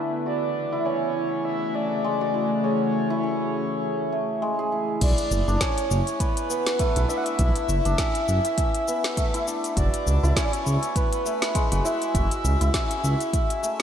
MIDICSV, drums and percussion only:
0, 0, Header, 1, 2, 480
1, 0, Start_track
1, 0, Tempo, 594059
1, 213, Time_signature, 4, 2, 24, 8
1, 11167, End_track
2, 0, Start_track
2, 0, Title_t, "Drums"
2, 4051, Note_on_c, 9, 36, 110
2, 4051, Note_on_c, 9, 42, 67
2, 4051, Note_on_c, 9, 49, 92
2, 4056, Note_on_c, 9, 82, 41
2, 4132, Note_off_c, 9, 36, 0
2, 4132, Note_off_c, 9, 42, 0
2, 4132, Note_off_c, 9, 49, 0
2, 4137, Note_off_c, 9, 82, 0
2, 4186, Note_on_c, 9, 42, 43
2, 4190, Note_on_c, 9, 82, 21
2, 4266, Note_off_c, 9, 42, 0
2, 4271, Note_off_c, 9, 82, 0
2, 4295, Note_on_c, 9, 82, 83
2, 4376, Note_off_c, 9, 82, 0
2, 4430, Note_on_c, 9, 82, 31
2, 4511, Note_off_c, 9, 82, 0
2, 4531, Note_on_c, 9, 36, 106
2, 4531, Note_on_c, 9, 38, 90
2, 4531, Note_on_c, 9, 42, 72
2, 4536, Note_on_c, 9, 82, 47
2, 4612, Note_off_c, 9, 36, 0
2, 4612, Note_off_c, 9, 38, 0
2, 4612, Note_off_c, 9, 42, 0
2, 4617, Note_off_c, 9, 82, 0
2, 4668, Note_on_c, 9, 42, 45
2, 4672, Note_on_c, 9, 82, 23
2, 4748, Note_off_c, 9, 42, 0
2, 4753, Note_off_c, 9, 82, 0
2, 4775, Note_on_c, 9, 82, 78
2, 4856, Note_off_c, 9, 82, 0
2, 4906, Note_on_c, 9, 42, 34
2, 4910, Note_on_c, 9, 82, 35
2, 4987, Note_off_c, 9, 42, 0
2, 4991, Note_off_c, 9, 82, 0
2, 5011, Note_on_c, 9, 36, 103
2, 5011, Note_on_c, 9, 42, 66
2, 5016, Note_on_c, 9, 82, 42
2, 5091, Note_off_c, 9, 36, 0
2, 5092, Note_off_c, 9, 42, 0
2, 5097, Note_off_c, 9, 82, 0
2, 5147, Note_on_c, 9, 42, 42
2, 5152, Note_on_c, 9, 82, 22
2, 5228, Note_off_c, 9, 42, 0
2, 5232, Note_off_c, 9, 82, 0
2, 5255, Note_on_c, 9, 82, 79
2, 5335, Note_off_c, 9, 82, 0
2, 5386, Note_on_c, 9, 38, 78
2, 5386, Note_on_c, 9, 42, 33
2, 5390, Note_on_c, 9, 82, 33
2, 5466, Note_off_c, 9, 38, 0
2, 5466, Note_off_c, 9, 42, 0
2, 5471, Note_off_c, 9, 82, 0
2, 5489, Note_on_c, 9, 42, 65
2, 5491, Note_on_c, 9, 36, 110
2, 5494, Note_on_c, 9, 82, 40
2, 5570, Note_off_c, 9, 42, 0
2, 5571, Note_off_c, 9, 36, 0
2, 5575, Note_off_c, 9, 82, 0
2, 5625, Note_on_c, 9, 42, 50
2, 5629, Note_on_c, 9, 82, 24
2, 5705, Note_off_c, 9, 42, 0
2, 5710, Note_off_c, 9, 82, 0
2, 5734, Note_on_c, 9, 82, 79
2, 5815, Note_off_c, 9, 82, 0
2, 5865, Note_on_c, 9, 42, 33
2, 5870, Note_on_c, 9, 82, 34
2, 5946, Note_off_c, 9, 42, 0
2, 5950, Note_off_c, 9, 82, 0
2, 5970, Note_on_c, 9, 36, 112
2, 5970, Note_on_c, 9, 42, 61
2, 5974, Note_on_c, 9, 82, 41
2, 6050, Note_off_c, 9, 42, 0
2, 6051, Note_off_c, 9, 36, 0
2, 6055, Note_off_c, 9, 82, 0
2, 6105, Note_on_c, 9, 42, 45
2, 6109, Note_on_c, 9, 82, 23
2, 6186, Note_off_c, 9, 42, 0
2, 6190, Note_off_c, 9, 82, 0
2, 6214, Note_on_c, 9, 82, 83
2, 6295, Note_off_c, 9, 82, 0
2, 6345, Note_on_c, 9, 42, 31
2, 6350, Note_on_c, 9, 82, 31
2, 6426, Note_off_c, 9, 42, 0
2, 6431, Note_off_c, 9, 82, 0
2, 6450, Note_on_c, 9, 36, 116
2, 6450, Note_on_c, 9, 38, 88
2, 6450, Note_on_c, 9, 42, 73
2, 6455, Note_on_c, 9, 82, 50
2, 6531, Note_off_c, 9, 36, 0
2, 6531, Note_off_c, 9, 38, 0
2, 6531, Note_off_c, 9, 42, 0
2, 6536, Note_off_c, 9, 82, 0
2, 6586, Note_on_c, 9, 42, 44
2, 6590, Note_on_c, 9, 82, 24
2, 6666, Note_off_c, 9, 42, 0
2, 6671, Note_off_c, 9, 82, 0
2, 6695, Note_on_c, 9, 82, 79
2, 6775, Note_off_c, 9, 82, 0
2, 6825, Note_on_c, 9, 42, 35
2, 6830, Note_on_c, 9, 82, 37
2, 6906, Note_off_c, 9, 42, 0
2, 6911, Note_off_c, 9, 82, 0
2, 6930, Note_on_c, 9, 42, 66
2, 6931, Note_on_c, 9, 36, 106
2, 6935, Note_on_c, 9, 82, 46
2, 7011, Note_off_c, 9, 42, 0
2, 7012, Note_off_c, 9, 36, 0
2, 7016, Note_off_c, 9, 82, 0
2, 7066, Note_on_c, 9, 42, 42
2, 7071, Note_on_c, 9, 82, 20
2, 7147, Note_off_c, 9, 42, 0
2, 7151, Note_off_c, 9, 82, 0
2, 7175, Note_on_c, 9, 82, 85
2, 7256, Note_off_c, 9, 82, 0
2, 7307, Note_on_c, 9, 38, 85
2, 7307, Note_on_c, 9, 42, 31
2, 7312, Note_on_c, 9, 82, 34
2, 7388, Note_off_c, 9, 38, 0
2, 7388, Note_off_c, 9, 42, 0
2, 7393, Note_off_c, 9, 82, 0
2, 7411, Note_on_c, 9, 36, 114
2, 7412, Note_on_c, 9, 42, 69
2, 7416, Note_on_c, 9, 82, 43
2, 7492, Note_off_c, 9, 36, 0
2, 7492, Note_off_c, 9, 42, 0
2, 7497, Note_off_c, 9, 82, 0
2, 7548, Note_on_c, 9, 42, 48
2, 7553, Note_on_c, 9, 82, 25
2, 7629, Note_off_c, 9, 42, 0
2, 7634, Note_off_c, 9, 82, 0
2, 7657, Note_on_c, 9, 82, 83
2, 7738, Note_off_c, 9, 82, 0
2, 7790, Note_on_c, 9, 42, 33
2, 7795, Note_on_c, 9, 82, 35
2, 7871, Note_off_c, 9, 42, 0
2, 7876, Note_off_c, 9, 82, 0
2, 7892, Note_on_c, 9, 36, 115
2, 7893, Note_on_c, 9, 42, 61
2, 7898, Note_on_c, 9, 82, 44
2, 7973, Note_off_c, 9, 36, 0
2, 7974, Note_off_c, 9, 42, 0
2, 7979, Note_off_c, 9, 82, 0
2, 8029, Note_on_c, 9, 42, 45
2, 8034, Note_on_c, 9, 82, 25
2, 8110, Note_off_c, 9, 42, 0
2, 8115, Note_off_c, 9, 82, 0
2, 8139, Note_on_c, 9, 82, 77
2, 8220, Note_off_c, 9, 82, 0
2, 8277, Note_on_c, 9, 82, 32
2, 8357, Note_off_c, 9, 82, 0
2, 8373, Note_on_c, 9, 36, 116
2, 8376, Note_on_c, 9, 38, 88
2, 8376, Note_on_c, 9, 42, 67
2, 8380, Note_on_c, 9, 82, 48
2, 8454, Note_off_c, 9, 36, 0
2, 8457, Note_off_c, 9, 38, 0
2, 8457, Note_off_c, 9, 42, 0
2, 8461, Note_off_c, 9, 82, 0
2, 8511, Note_on_c, 9, 42, 42
2, 8515, Note_on_c, 9, 82, 23
2, 8592, Note_off_c, 9, 42, 0
2, 8596, Note_off_c, 9, 82, 0
2, 8619, Note_on_c, 9, 82, 79
2, 8700, Note_off_c, 9, 82, 0
2, 8748, Note_on_c, 9, 42, 34
2, 8753, Note_on_c, 9, 82, 37
2, 8829, Note_off_c, 9, 42, 0
2, 8833, Note_off_c, 9, 82, 0
2, 8853, Note_on_c, 9, 36, 112
2, 8854, Note_on_c, 9, 42, 63
2, 8858, Note_on_c, 9, 82, 48
2, 8934, Note_off_c, 9, 36, 0
2, 8935, Note_off_c, 9, 42, 0
2, 8939, Note_off_c, 9, 82, 0
2, 8989, Note_on_c, 9, 42, 44
2, 8994, Note_on_c, 9, 82, 23
2, 9070, Note_off_c, 9, 42, 0
2, 9075, Note_off_c, 9, 82, 0
2, 9098, Note_on_c, 9, 82, 81
2, 9178, Note_off_c, 9, 82, 0
2, 9228, Note_on_c, 9, 38, 83
2, 9228, Note_on_c, 9, 42, 32
2, 9233, Note_on_c, 9, 82, 36
2, 9309, Note_off_c, 9, 38, 0
2, 9309, Note_off_c, 9, 42, 0
2, 9313, Note_off_c, 9, 82, 0
2, 9333, Note_on_c, 9, 36, 116
2, 9333, Note_on_c, 9, 42, 66
2, 9338, Note_on_c, 9, 82, 47
2, 9414, Note_off_c, 9, 36, 0
2, 9414, Note_off_c, 9, 42, 0
2, 9418, Note_off_c, 9, 82, 0
2, 9469, Note_on_c, 9, 42, 49
2, 9473, Note_on_c, 9, 82, 25
2, 9550, Note_off_c, 9, 42, 0
2, 9554, Note_off_c, 9, 82, 0
2, 9579, Note_on_c, 9, 82, 86
2, 9660, Note_off_c, 9, 82, 0
2, 9709, Note_on_c, 9, 42, 30
2, 9714, Note_on_c, 9, 82, 35
2, 9790, Note_off_c, 9, 42, 0
2, 9795, Note_off_c, 9, 82, 0
2, 9814, Note_on_c, 9, 36, 117
2, 9816, Note_on_c, 9, 42, 61
2, 9821, Note_on_c, 9, 82, 44
2, 9895, Note_off_c, 9, 36, 0
2, 9897, Note_off_c, 9, 42, 0
2, 9901, Note_off_c, 9, 82, 0
2, 9949, Note_on_c, 9, 42, 42
2, 9954, Note_on_c, 9, 82, 23
2, 10030, Note_off_c, 9, 42, 0
2, 10035, Note_off_c, 9, 82, 0
2, 10059, Note_on_c, 9, 82, 77
2, 10140, Note_off_c, 9, 82, 0
2, 10190, Note_on_c, 9, 42, 29
2, 10194, Note_on_c, 9, 82, 33
2, 10270, Note_off_c, 9, 42, 0
2, 10275, Note_off_c, 9, 82, 0
2, 10294, Note_on_c, 9, 36, 114
2, 10294, Note_on_c, 9, 38, 82
2, 10294, Note_on_c, 9, 42, 70
2, 10299, Note_on_c, 9, 82, 47
2, 10374, Note_off_c, 9, 36, 0
2, 10375, Note_off_c, 9, 38, 0
2, 10375, Note_off_c, 9, 42, 0
2, 10379, Note_off_c, 9, 82, 0
2, 10430, Note_on_c, 9, 42, 40
2, 10434, Note_on_c, 9, 82, 21
2, 10510, Note_off_c, 9, 42, 0
2, 10515, Note_off_c, 9, 82, 0
2, 10540, Note_on_c, 9, 82, 80
2, 10621, Note_off_c, 9, 82, 0
2, 10670, Note_on_c, 9, 42, 30
2, 10674, Note_on_c, 9, 82, 36
2, 10750, Note_off_c, 9, 42, 0
2, 10755, Note_off_c, 9, 82, 0
2, 10774, Note_on_c, 9, 36, 113
2, 10775, Note_on_c, 9, 42, 60
2, 10779, Note_on_c, 9, 82, 44
2, 10855, Note_off_c, 9, 36, 0
2, 10855, Note_off_c, 9, 42, 0
2, 10860, Note_off_c, 9, 82, 0
2, 10910, Note_on_c, 9, 42, 42
2, 10915, Note_on_c, 9, 82, 22
2, 10991, Note_off_c, 9, 42, 0
2, 10995, Note_off_c, 9, 82, 0
2, 11019, Note_on_c, 9, 82, 80
2, 11099, Note_off_c, 9, 82, 0
2, 11167, End_track
0, 0, End_of_file